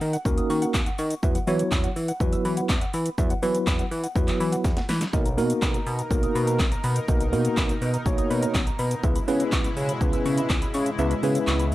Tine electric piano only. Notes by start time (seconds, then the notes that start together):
0.25 A#3 C#4 D#4 F#4 A#4
1.23 F#3 B3 E4 F#4 B4
1.47 F#3 B3 E4 F#4 C#5
2.20 F#3 B3 E4 F#4 B4
3.18 F#3 B3 E4 F#4 B4
3.42 F#3 B3 E4 F#4 B4
4.16 F#3 B3 E4 F#4 B4
5.13 A#3 B3 D#4 F#4 A#4
5.37 A#3 B3 D#4 F#4 A#4
6.11 A#3 B3 D#4 F#4 A#4
7.08 A#3 B3 D#4 F#4 A#4
7.32 A#3 B3 D#4 F#4 A#4
8.06 A#3 B3 D#4 F#4 C#5
9.03 B3 C#4 E4 G#4 B4
9.28 B3 C#4 E4 G#4 B4
10.01 B3 C#4 E4 G#4 B4
10.99 B3 C#4 E4 G#4 B4
11.23 B3 C#4 E4 G#4 B4